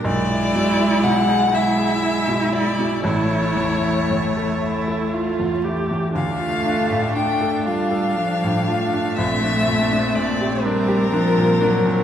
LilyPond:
<<
  \new Staff \with { instrumentName = "Violin" } { \time 6/8 \key d \minor \tempo 4. = 40 d''4 fis''8 e''4 d''8 | cis''2~ cis''8 r8 | f''4 g''8 f''4. | e''4 d''8 bes'4. | }
  \new Staff \with { instrumentName = "Viola" } { \time 6/8 \key d \minor e'4. e'4. | e'4. e'8 f'8 g'8 | d'2. | c'2. | }
  \new Staff \with { instrumentName = "Grand piano" } { \time 6/8 \key d \minor b,,16 e'16 b,16 e'16 b,16 gis'16 e'16 gis'16 e'16 b,16 e'16 b,16 | a,,16 e'16 e,16 e'16 e,16 a'16 e'16 a'16 e'16 e,16 e'16 e,16 | d,16 f'16 d'16 a,16 d'16 a'16 f'16 a'16 d'16 a,16 f'16 d'16 | bes,,16 d'16 bes,16 d'16 bes,16 g'16 d'16 g'16 d'16 bes,16 d'16 bes,16 | }
  \new Staff \with { instrumentName = "Cello" } { \clef bass \time 6/8 \key d \minor gis4. gis4. | a2. | a4. g8 f8 a8~ | a4. g8 f8 fis8 | }
>>